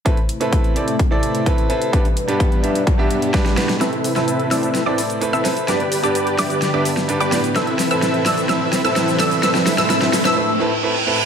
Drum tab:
HH |xxxxxxxxx-xxxxxx|xxxxxxxxx-xxxxxx|xxoxxxoxx-oxxxox|xxoxxxoxx-oxxxox|
SH |----------------|----------------|x-xxx-xxx-xxxxxx|x-xxx-xxx-xxxxxx|
SD |----------------|------------oooo|o--o--o-o-----o-|o-----o-o--o--o-|
BD |o---o---o---o---|o---o---o---o---|----------------|----------------|

HH |xxoxxxoxx-oxxxox|xxoxxxox--------|
SH |x-xxx-xxx-xxxxxx|xxxxx-xx--------|
SD |o-o-o-o-o-o-o-o-|oooooooo--------|
BD |----------------|----------------|